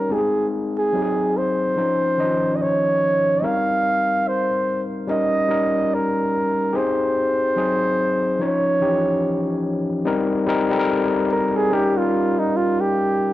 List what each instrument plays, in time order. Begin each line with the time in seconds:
Already playing: tine electric piano G3 C#4 D#4 A#4 C#5, flugelhorn A#4
0.09 tine electric piano G#3 C4 D#4 G4, flugelhorn G#4
0.18 tine electric piano G#4
0.78 flugelhorn G#4
0.93 tine electric piano F#3 C4 D#4 G4
1.02 tine electric piano G#4
1.37 flugelhorn C5
1.76 tine electric piano F3 C#4 D#4 C5
2.18 tine electric piano D#3 C#4 D#4 D#5
2.24 tine electric piano F3
2.56 flugelhorn D#5
2.62 flugelhorn C#5
3.42 tine electric piano G3 C4 D#4 A#4, flugelhorn F5
4.28 flugelhorn C5
5.07 tine electric piano G3 C#4 D#4 A#4, flugelhorn D#5
5.49 tine electric piano G3 C#4 D#4 A#4
5.94 flugelhorn A#4
6.73 tine electric piano C4 D#4 G4 G#4, flugelhorn C5
7.56 tine electric piano F#3 C4 D#4 G#4
8.39 tine electric piano F3 C#4 D#4 C#5
8.44 flugelhorn C#5
8.81 tine electric piano E3 C#4 D#4 G4
8.87 tine electric piano F3
10.05 tine electric piano G3 C4 D#4 A#4
10.46 tine electric piano G3 C4 D#4 A#4
10.70 tine electric piano G3 C4 D#4 A4
10.79 tine electric piano A#4
11.32 flugelhorn A#4
11.56 flugelhorn G#4
11.70 tine electric piano G3 C#4 D#4 A#4, flugelhorn G4
11.97 flugelhorn F4
12.39 flugelhorn D#4
12.57 flugelhorn F4
12.81 flugelhorn G4